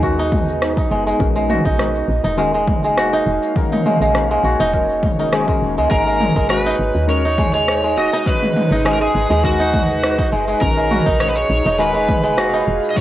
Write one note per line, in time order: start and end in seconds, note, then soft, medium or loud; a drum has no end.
0.00 0.85 D#2 medium
0.00 0.16 D#3 medium
0.00 0.90 G#3 medium
0.00 1.20 G#3 medium
0.00 0.16 G#3 medium
0.00 1.21 B3 medium
0.00 0.16 C#4 medium
0.00 0.19 D#4 medium
0.00 2.83 D#4 medium
0.00 1.49 F#4 medium
0.00 0.16 F#4 medium
0.00 5.91 G#4 medium
0.00 0.17 A#4 loud
0.00 kick medium
0.00 shaker medium
0.19 0.77 D#4 loud
0.19 shaker soft
0.32 kick loud
0.32 mid tom medium
0.48 shaker medium
0.62 cross-stick loud
0.62 shaker medium
0.77 1.65 D#4 medium
0.77 kick loud
0.77 shaker soft
0.91 1.13 F#1 medium
0.91 1.05 G#3 medium
1.07 1.25 G#3 medium
1.07 shaker medium
1.19 1.59 A#1 loud
1.19 1.75 D#3 medium
1.19 1.75 G#3 medium
1.19 5.91 A#3 medium
1.19 1.76 C#4 medium
1.19 1.76 F#4 medium
1.19 1.76 A#4 medium
1.19 kick loud
1.19 shaker medium
1.36 2.36 G#3 medium
1.36 shaker soft
1.50 2.96 F#4 medium
1.50 mid tom medium
1.65 2.03 A#1 medium
1.65 2.24 D#4 loud
1.65 kick loud
1.65 shaker medium
1.78 1.87 D#3 medium
1.78 1.87 G#3 medium
1.78 1.87 C#4 medium
1.78 1.88 F#4 medium
1.78 1.88 A#4 medium
1.78 5.91 F5 medium
1.78 cross-stick medium
1.78 shaker medium
1.95 shaker soft
2.08 2.20 A#1 medium
2.24 3.20 E1 medium
2.24 3.12 D#4 medium
2.24 shaker medium
2.32 6.99 C#5 medium
2.37 2.51 D#3 medium
2.37 2.51 G#3 medium
2.37 2.53 G#3 medium
2.37 2.51 C#4 medium
2.37 2.51 F#4 medium
2.37 2.52 A#4 loud
2.37 shaker medium
2.54 2.83 G#3 medium
2.54 shaker soft
2.67 kick loud
2.67 mid tom medium
2.84 3.84 G#3 medium
2.84 shaker medium
2.97 4.43 F#4 medium
2.97 cross-stick loud
2.97 shaker medium
3.13 3.72 D#4 medium
3.13 shaker soft
3.26 3.37 E1 medium
3.42 shaker medium
3.55 4.11 D#3 medium
3.55 4.11 G#3 medium
3.55 4.11 C#4 medium
3.55 4.12 F#4 medium
3.55 4.12 A#4 loud
3.55 kick loud
3.55 shaker medium
3.72 4.60 D#4 medium
3.72 mid tom medium
3.72 shaker soft
3.86 4.00 G#3 medium
3.86 mid tom medium
4.00 4.38 A#1 medium
4.00 4.30 G#3 medium
4.00 shaker medium
4.14 4.22 D#3 medium
4.14 4.23 G#3 medium
4.14 4.23 C#4 medium
4.14 4.23 F#4 medium
4.14 4.23 A#4 medium
4.14 cross-stick medium
4.14 shaker medium
4.31 5.32 G#3 medium
4.31 shaker soft
4.43 4.55 A#1 medium
4.43 5.91 F#4 medium
4.60 5.56 E1 medium
4.60 5.19 D#4 loud
4.60 shaker medium
4.72 4.86 D#3 medium
4.72 4.86 G#3 medium
4.72 4.87 C#4 medium
4.72 4.87 F#4 medium
4.72 4.87 A#4 loud
4.72 kick medium
4.72 shaker medium
4.89 shaker soft
5.03 kick loud
5.03 mid tom medium
5.18 5.25 D#3 medium
5.18 5.26 G#3 medium
5.18 5.26 C#4 medium
5.18 6.66 D#4 medium
5.18 5.26 F#4 medium
5.18 5.26 A#4 medium
5.18 shaker medium
5.31 5.44 D#3 medium
5.31 5.44 G#3 medium
5.31 5.47 G#3 medium
5.31 5.44 C#4 medium
5.31 5.45 F#4 medium
5.31 5.45 G#4 medium
5.31 cross-stick loud
5.31 shaker medium
5.47 5.87 D#3 medium
5.47 5.87 G#3 medium
5.47 5.77 G#3 medium
5.47 5.88 C#4 medium
5.47 5.88 F#4 medium
5.47 5.88 A#4 medium
5.47 kick loud
5.47 shaker soft
5.62 5.79 E1 medium
5.78 5.87 C#2 medium
5.78 5.90 G#3 medium
5.78 shaker medium
5.90 6.29 G#1 loud
5.90 6.46 D#3 medium
5.90 6.46 G#3 medium
5.90 10.61 G#3 medium
5.90 6.06 G#3 medium
5.90 6.47 C#4 medium
5.90 6.47 F#4 medium
5.90 6.49 A#4 medium
5.90 6.47 A#4 loud
5.90 kick loud
5.90 shaker medium
6.05 6.35 G#3 medium
6.05 11.65 D#4 medium
6.05 shaker soft
6.21 mid tom medium
6.36 6.73 G#1 medium
6.36 7.37 G#3 medium
6.36 kick loud
6.36 shaker medium
6.49 6.58 D#3 medium
6.49 6.58 G#3 medium
6.49 6.58 C#4 medium
6.49 7.96 F#4 medium
6.49 6.59 F#4 medium
6.49 6.59 A#4 medium
6.49 7.05 B4 medium
6.49 cross-stick medium
6.49 shaker medium
6.66 7.24 D#4 loud
6.66 shaker soft
6.79 6.91 G#1 medium
6.95 7.98 D#2 medium
6.95 shaker medium
7.00 13.01 G#4 medium
7.07 7.21 D#3 medium
7.07 7.21 G#3 medium
7.07 7.22 C#4 medium
7.07 7.22 F#4 medium
7.07 7.22 A#4 loud
7.07 7.53 C#5 loud
7.07 shaker medium
7.24 8.13 D#4 medium
7.24 shaker soft
7.38 7.53 G#3 medium
7.38 kick loud
7.38 mid tom medium
7.54 7.82 G#3 medium
7.54 7.98 C#5 loud
7.54 shaker medium
7.67 10.62 B4 medium
7.67 cross-stick loud
7.67 shaker medium
7.84 8.84 G#3 medium
7.84 shaker soft
7.96 8.08 D#1 medium
7.96 9.43 F#4 medium
7.96 8.27 D#5 loud
8.13 8.72 D#4 loud
8.13 shaker medium
8.26 8.82 D#3 medium
8.26 8.82 G#3 medium
8.26 8.82 C#4 medium
8.26 8.82 F#4 medium
8.26 8.82 B4 loud
8.26 kick loud
8.26 shaker medium
8.43 mid tom medium
8.43 shaker soft
8.57 mid tom medium
8.71 9.08 G#1 medium
8.71 9.59 D#4 medium
8.71 shaker medium
8.85 8.93 D#3 medium
8.85 8.93 G#3 medium
8.85 8.99 G#3 medium
8.85 8.94 C#4 medium
8.85 8.94 F#4 medium
8.85 8.93 G#4 medium
8.85 8.94 A#4 medium
8.85 cross-stick medium
8.85 shaker soft
8.94 9.01 A#4 medium
9.01 9.29 G#3 medium
9.01 9.42 G#4 loud
9.01 shaker soft
9.15 9.26 G#1 medium
9.30 10.26 D#2 medium
9.30 10.31 G#3 medium
9.30 shaker medium
9.44 9.57 D#3 loud
9.44 9.57 G#3 medium
9.44 9.58 C#4 medium
9.44 10.90 F#4 medium
9.44 9.58 F#4 medium
9.44 10.29 F#4 medium
9.44 9.58 A#4 loud
9.44 kick medium
9.44 shaker medium
9.60 10.18 D#4 loud
9.60 shaker soft
9.74 kick loud
9.74 mid tom medium
9.90 shaker medium
10.04 cross-stick loud
10.04 shaker medium
10.18 11.06 D#4 medium
10.18 kick loud
10.18 shaker soft
10.32 10.54 F#1 medium
10.32 10.47 G#3 medium
10.48 10.67 G#3 medium
10.48 shaker medium
10.61 11.00 A#1 loud
10.61 13.01 A#2 medium
10.61 11.17 D#3 medium
10.61 11.17 G#3 medium
10.61 11.17 C#4 medium
10.61 11.18 F#4 medium
10.61 11.22 A#4 loud
10.61 11.18 A#4 loud
10.61 kick loud
10.61 shaker medium
10.74 11.78 G#3 medium
10.74 13.01 F5 medium
10.78 shaker soft
10.91 12.37 F#4 medium
10.91 mid tom medium
11.06 11.44 A#1 medium
11.06 11.65 D#4 loud
11.06 kick loud
11.06 shaker medium
11.20 11.28 D#3 medium
11.20 11.29 G#3 medium
11.20 11.29 C#4 medium
11.20 11.29 F#4 medium
11.20 11.29 A#4 medium
11.20 11.28 C#5 loud
11.20 cross-stick medium
11.20 shaker medium
11.29 11.36 B4 loud
11.29 13.01 C#5 medium
11.36 11.81 C#5 loud
11.36 shaker soft
11.50 11.61 A#1 medium
11.65 12.61 E1 medium
11.65 12.53 D#4 medium
11.65 shaker medium
11.78 11.92 D#3 medium
11.78 11.93 G#3 medium
11.78 11.92 G#3 medium
11.78 11.92 C#4 medium
11.78 11.93 F#4 medium
11.78 11.93 A#4 loud
11.78 12.64 B4 medium
11.78 shaker medium
11.94 12.22 G#3 medium
11.94 shaker soft
12.09 kick loud
12.09 mid tom medium
12.24 13.01 G#3 medium
12.24 shaker medium
12.37 13.01 F#4 medium
12.37 cross-stick medium
12.37 shaker medium
12.53 13.01 D#4 medium
12.53 shaker soft
12.67 12.79 E1 medium
12.84 shaker medium
12.91 12.97 D#5 medium
12.96 13.01 D#3 medium
12.96 13.01 G#3 medium
12.96 13.01 C#4 medium
12.96 13.01 F#4 medium
12.96 13.01 A#4 loud
12.96 13.01 C#5 loud
12.96 kick loud
12.96 shaker medium